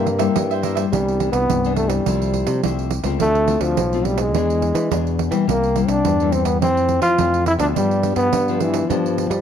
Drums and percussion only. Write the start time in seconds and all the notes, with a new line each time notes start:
0.07 pandeiro
0.19 pandeiro
0.36 pandeiro
0.51 pandeiro
0.63 pandeiro
0.77 pandeiro
0.93 pandeiro
1.08 pandeiro
1.20 pandeiro
1.33 pandeiro
1.50 pandeiro
1.64 pandeiro
1.76 pandeiro
1.90 pandeiro
2.06 pandeiro
2.22 pandeiro
2.34 pandeiro
2.47 pandeiro
2.64 pandeiro
2.79 pandeiro
2.91 pandeiro
3.04 pandeiro
3.20 pandeiro
3.35 pandeiro
3.48 pandeiro
3.61 pandeiro
3.77 pandeiro
3.93 pandeiro
4.05 pandeiro
4.18 pandeiro
4.34 pandeiro
4.50 pandeiro
4.62 pandeiro
4.75 pandeiro
4.91 pandeiro
5.07 pandeiro
5.19 pandeiro
5.32 pandeiro
5.49 pandeiro
5.63 pandeiro
5.76 pandeiro
5.88 pandeiro
6.05 pandeiro
6.20 pandeiro
6.32 pandeiro
6.45 pandeiro
6.62 pandeiro
6.77 pandeiro
6.89 pandeiro
7.02 pandeiro
7.18 pandeiro
7.34 pandeiro
7.46 pandeiro
7.59 pandeiro
7.76 pandeiro
7.91 pandeiro
8.03 pandeiro
8.16 pandeiro
8.33 pandeiro
8.48 pandeiro
8.60 pandeiro
8.74 pandeiro
8.90 pandeiro
9.06 pandeiro
9.18 pandeiro
9.31 pandeiro